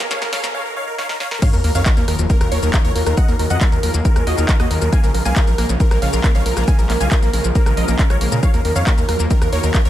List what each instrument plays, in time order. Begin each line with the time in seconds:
Already playing: riser
0.00 analog synth pad D#3 B3 G#4 A#4
0.11 synth pluck F3 F5, supersaw synth C#5 F5, snare, closed hi-hat, shaker
0.22 synth pluck A#3 A#4, supersaw synth A#4, snare, closed hi-hat, shaker
0.32 analog synth pad D#3 B3 G#4 A#4, synth pluck F3 F5, supersaw synth C#5 F5, snare, open hi-hat
0.43 synth pluck A#3 A#4, supersaw synth A#4, snare, closed hi-hat, shaker
0.54 supersaw synth C#5 F5, swell
0.65 supersaw synth A#4
0.76 supersaw synth C#5 F5
0.87 supersaw synth A#4
0.98 supersaw synth C#5 F5, snare
1.09 supersaw synth A#4, snare
1.20 supersaw synth C#5 F5, snare
1.31 supersaw synth A#4, snare
1.42 synth pluck D#3 F5, supersaw synth C#5 F5, kick, closed hi-hat, crash, sub drop, shaker
1.53 analog synth bass D#2, analog synth pad D#3 F#3 F4 A#4, synth pluck F3 A#4, supersaw synth A#4, closed hi-hat, shaker
1.64 analog synth bass D#2, synth pluck A#3 A#4, supersaw synth A#4, open hi-hat
1.75 analog synth bass F2, synth pluck D#3 F5, analog synth pad D#3 F#3 F4 A#4, supersaw synth C#5 F5, closed hi-hat, shaker
1.86 synth pluck F3 A#4, supersaw synth A#4, kick, clap, closed hi-hat, shaker
1.97 analog synth bass D#2, synth pluck A#3 A#4, supersaw synth A#4, closed hi-hat, shaker
2.08 analog synth bass D#2, synth pluck D#3 A#4, analog synth pad D#3 F#3 F4 A#4, supersaw synth A#4, cross-stick, open hi-hat
2.19 analog synth bass D#2, synth pluck F3, closed hi-hat, shaker
2.30 analog synth pad D#3 F#3 F4 A#4, synth pluck A#3 A#4, supersaw synth A#4, kick, closed hi-hat, shaker
2.41 analog synth bass D#2, synth pluck D#3 A#4, supersaw synth A#4, cross-stick, closed hi-hat, shaker
2.52 analog synth bass D#2, analog synth pad D#3 F#3 F4 A#4, synth pluck F3 C#5, supersaw synth A#4 C#5, open hi-hat
2.63 analog synth bass D#2, synth pluck A#3 A#4, supersaw synth A#4, closed hi-hat, shaker
2.74 synth pluck D#3 A#4, analog synth pad D#3 F#3 F4 A#4, supersaw synth A#4, kick, cross-stick, clap, closed hi-hat, shaker
2.84 analog synth bass D#2, analog synth pad D#3 F#3 F4 A#4, synth pluck F3 C#5, supersaw synth A#4 C#5, closed hi-hat, shaker
2.95 analog synth bass D#2, analog synth pad D#3 F#3 F4 A#4, synth pluck A#3 A#4, supersaw synth A#4, open hi-hat
3.06 analog synth bass D#2, synth pluck D#3 A#4, supersaw synth A#4, cross-stick, closed hi-hat, shaker
3.17 synth pluck F3 F#5, supersaw synth D#5 F#5, kick, closed hi-hat, shaker
3.28 analog synth bass D#2, analog synth pad D#3 F#3 F4 G#4, synth pluck A#3 A#4, supersaw synth A#4, closed hi-hat, shaker
3.39 analog synth bass D#2, synth pluck D#3 A#4, supersaw synth A#4, open hi-hat
3.50 analog synth bass F2, analog synth pad D#3 F#3 F4 G#4, synth pluck F3 F#5, supersaw synth D#5 F#5, closed hi-hat, shaker
3.61 synth pluck A#3 A#4, supersaw synth A#4, kick, clap, closed hi-hat, shaker
3.72 analog synth bass D#2, synth pluck D#3 A#4, supersaw synth A#4, closed hi-hat, shaker
3.83 analog synth bass D#2, analog synth pad D#3 F#3 F4 G#4, synth pluck F3 A#4, supersaw synth A#4, open hi-hat
3.94 analog synth bass D#2, synth pluck A#3, closed hi-hat, shaker
4.05 synth pluck D#3 A#4, analog synth pad D#3 F#3 F4 G#4, supersaw synth A#4, kick, closed hi-hat, shaker
4.16 analog synth bass D#2, synth pluck F3 A#4, supersaw synth A#4, cross-stick, closed hi-hat, shaker
4.27 analog synth bass D#2, analog synth pad D#3 F#3 F4 G#4, synth pluck A#3 D#5, supersaw synth F#4 D#5, open hi-hat
4.38 analog synth bass D#2, synth pluck D#3 A#4, supersaw synth A#4, closed hi-hat, shaker
4.49 analog synth pad D#3 F#3 F4 G#4, synth pluck F3 A#4, supersaw synth A#4, kick, clap, closed hi-hat, shaker
4.60 analog synth bass D#2, analog synth pad D#3 F#3 F4 G#4, synth pluck A#3 D#5, supersaw synth F#4 D#5, cross-stick, closed hi-hat, shaker
4.71 analog synth bass D#2, synth pluck D#3 A#4, analog synth pad D#3 F#3 F4 G#4, supersaw synth A#4, open hi-hat
4.82 analog synth bass D#2, synth pluck F3 A#4, supersaw synth A#4, closed hi-hat, shaker
4.92 synth pluck A#3 G#5, supersaw synth F5 G#5, kick, closed hi-hat, shaker
5.03 analog synth bass A#1, analog synth pad C#3 G#3 F4 A#4, synth pluck C#3 A#4, supersaw synth A#4, closed hi-hat, shaker
5.14 analog synth bass A#1, synth pluck F3 A#4, supersaw synth A#4, open hi-hat
5.25 analog synth bass B1, analog synth pad C#3 G#3 F4 A#4, synth pluck A#3 G#5, supersaw synth F5 G#5, closed hi-hat, shaker
5.36 synth pluck C#3 A#4, supersaw synth A#4, kick, clap, closed hi-hat, shaker
5.47 analog synth bass A#1, synth pluck F3 A#4, supersaw synth A#4, closed hi-hat, shaker
5.58 analog synth bass A#1, analog synth pad C#3 G#3 F4 A#4, synth pluck A#3 A#4, supersaw synth A#4, cross-stick, open hi-hat
5.69 analog synth bass A#1, synth pluck C#3, closed hi-hat, shaker
5.80 analog synth pad C#3 G#3 F4 A#4, synth pluck F3 A#4, supersaw synth A#4, kick, closed hi-hat, shaker
5.91 analog synth bass A#1, synth pluck A#3 A#4, supersaw synth A#4, cross-stick, closed hi-hat, shaker
6.02 analog synth bass A#1, synth pluck C#3 F5, analog synth pad C#3 G#3 F4 A#4, supersaw synth C#5 F5, open hi-hat
6.13 analog synth bass A#1, synth pluck F3 A#4, supersaw synth A#4, closed hi-hat, shaker
6.24 analog synth pad C#3 G#3 F4 A#4, synth pluck A#3 A#4, supersaw synth A#4, kick, cross-stick, clap, closed hi-hat, shaker
6.35 analog synth bass A#1, synth pluck C#3 F5, analog synth pad C#3 G#3 F4 A#4, supersaw synth C#5 F5, closed hi-hat, shaker
6.46 analog synth bass A#1, analog synth pad C#3 G#3 F4 A#4, synth pluck F3 A#4, supersaw synth A#4, open hi-hat
6.57 analog synth bass A#1, synth pluck A#3 A#4, supersaw synth A#4, cross-stick, closed hi-hat, shaker
6.68 synth pluck C#3 G#5, supersaw synth F5 G#5, kick, closed hi-hat, shaker
6.79 analog synth bass A#1, analog synth pad C#3 G#3 F4 A#4, synth pluck F3 A#4, supersaw synth A#4, closed hi-hat, shaker
6.90 analog synth bass A#1, synth pluck A#3 A#4, supersaw synth A#4, clap, open hi-hat
7.00 analog synth bass B1, synth pluck C#3 G#5, analog synth pad C#3 G#3 F4 A#4, supersaw synth F5 G#5, closed hi-hat, shaker
7.11 synth pluck F3 A#4, supersaw synth A#4, kick, clap, closed hi-hat, shaker
7.22 analog synth bass A#1, synth pluck A#3 A#4, supersaw synth A#4, closed hi-hat, shaker
7.33 analog synth bass A#1, synth pluck C#3 A#4, analog synth pad C#3 G#3 F4 A#4, supersaw synth A#4, open hi-hat
7.44 analog synth bass A#1, synth pluck F3, closed hi-hat, shaker
7.55 analog synth pad C#3 G#3 F4 A#4, synth pluck A#3 A#4, supersaw synth A#4, kick, closed hi-hat, shaker
7.66 analog synth bass A#1, synth pluck C#3 A#4, supersaw synth A#4, cross-stick, closed hi-hat, shaker
7.77 analog synth bass A#1, analog synth pad C#3 G#3 F4 A#4, synth pluck F3 D#5, supersaw synth A#4 D#5, open hi-hat
7.88 analog synth bass A#1, synth pluck A#3 A#4, supersaw synth A#4, closed hi-hat, shaker
7.99 synth pluck C#3 A#4, analog synth pad C#3 G#3 F4 A#4, supersaw synth A#4, kick, clap, closed hi-hat, shaker
8.10 analog synth bass A#1, analog synth pad C#3 G#3 F4 A#4, synth pluck F3 C#5, supersaw synth A#4 C#5, cross-stick, closed hi-hat, shaker
8.21 analog synth bass A#1, analog synth pad C#3 G#3 F4 A#4, synth pluck A#3 A#4, supersaw synth A#4, open hi-hat
8.32 analog synth bass A#2, synth pluck C#3 A#4, supersaw synth A#4, closed hi-hat, shaker
8.43 synth pluck F3 F5, supersaw synth C#5 F5, kick, closed hi-hat, shaker
8.54 analog synth bass D#2, analog synth pad D#3 F#3 F4 A#4, synth pluck A#3 A#4, supersaw synth A#4, closed hi-hat, shaker
8.65 analog synth bass D#2, synth pluck D#3 A#4, supersaw synth A#4, open hi-hat
8.76 analog synth bass F2, analog synth pad D#3 F#3 F4 A#4, synth pluck F3 F5, supersaw synth C#5 F5, closed hi-hat, shaker
8.87 synth pluck A#3 A#4, supersaw synth A#4, kick, clap, closed hi-hat, shaker
8.98 analog synth bass D#2, synth pluck D#3 A#4, supersaw synth A#4, closed hi-hat, shaker
9.09 analog synth bass D#2, analog synth pad D#3 F#3 F4 A#4, synth pluck F3 A#4, supersaw synth A#4, cross-stick, open hi-hat
9.20 analog synth bass D#2, synth pluck A#3, closed hi-hat, shaker
9.30 analog synth pad D#3 F#3 F4 A#4, synth pluck D#3 A#4, supersaw synth A#4, kick, closed hi-hat, shaker
9.41 analog synth bass D#2, synth pluck F3 A#4, supersaw synth A#4, cross-stick, closed hi-hat, shaker
9.52 analog synth bass D#2, analog synth pad D#3 F#3 F4 A#4, synth pluck A#3 C#5, supersaw synth A#4 C#5, open hi-hat
9.63 analog synth bass D#2, synth pluck D#3 A#4, supersaw synth A#4, closed hi-hat, shaker
9.74 analog synth pad D#3 F#3 F4 A#4, supersaw synth A#4, synth pluck A#4, kick, cross-stick, clap, closed hi-hat, shaker
9.85 analog synth bass D#2, analog synth pad D#3 F#3 F4 A#4, synth pluck A#3 C#5, supersaw synth A#4 C#5, closed hi-hat, shaker